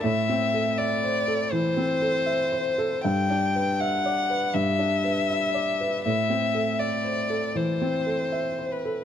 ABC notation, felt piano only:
X:1
M:4/4
L:1/8
Q:1/4=80
K:Ador
V:1 name="Felt piano"
(3A,, C A (3e c A (3E, C A (3e c A | (3G,, D B (3e d B (3G,, D B (3e d B | (3A,, C A (3e c A (3E, C A (3e c A |]